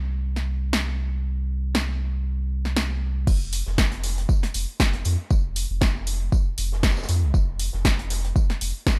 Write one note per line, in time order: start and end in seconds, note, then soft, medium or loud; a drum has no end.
0.00 3.25 C2 medium
0.36 snare soft
0.73 snare loud
1.75 snare loud
2.65 snare soft
2.77 snare loud
3.27 3.62 F1 loud
3.27 kick loud
3.27 crash medium
3.27 tambourine medium
3.53 open hi-hat loud
3.53 tambourine medium
3.66 4.25 F1 loud
3.66 snare soft
3.78 kick loud
3.78 snare loud
3.78 tambourine medium
3.92 closed hi-hat soft
4.04 snare soft
4.04 open hi-hat loud
4.04 tambourine medium
4.18 closed hi-hat soft
4.29 kick loud
4.29 tambourine medium
4.43 snare soft
4.43 closed hi-hat soft
4.54 4.66 F1 medium
4.54 open hi-hat loud
4.54 tambourine medium
4.80 kick loud
4.80 snare loud
4.80 tambourine medium
4.93 5.03 F1 medium
4.93 closed hi-hat soft
5.05 5.16 F2 medium
5.05 snare soft
5.05 open hi-hat medium
5.05 tambourine medium
5.30 5.66 F1 loud
5.30 kick loud
5.30 tambourine medium
5.56 open hi-hat loud
5.56 tambourine medium
5.70 6.29 F1 loud
5.81 kick loud
5.81 snare loud
5.81 tambourine medium
6.07 open hi-hat loud
6.07 tambourine medium
6.32 kick loud
6.32 tambourine medium
6.58 7.05 F1 loud
6.58 open hi-hat loud
6.58 tambourine medium
6.72 snare soft
6.83 kick loud
6.83 snare loud
6.83 tambourine medium
6.90 snare medium
6.90 tambourine medium
6.97 snare medium
6.97 tambourine medium
7.03 snare medium
7.03 tambourine medium
7.09 7.24 F2 medium
7.09 snare medium
7.09 open hi-hat medium
7.09 tambourine medium
7.23 7.32 C2 medium
7.34 7.69 F1 loud
7.34 kick loud
7.34 tambourine medium
7.59 open hi-hat loud
7.59 tambourine medium
7.73 8.32 F1 loud
7.73 snare soft
7.85 kick loud
7.85 snare loud
7.85 tambourine medium
7.99 closed hi-hat soft
8.10 snare soft
8.10 open hi-hat loud
8.10 tambourine medium
8.24 closed hi-hat soft
8.36 kick loud
8.36 tambourine medium
8.50 snare soft
8.50 closed hi-hat soft
8.61 8.72 F1 medium
8.61 open hi-hat loud
8.61 tambourine medium
8.87 kick loud
8.87 snare loud
8.87 tambourine medium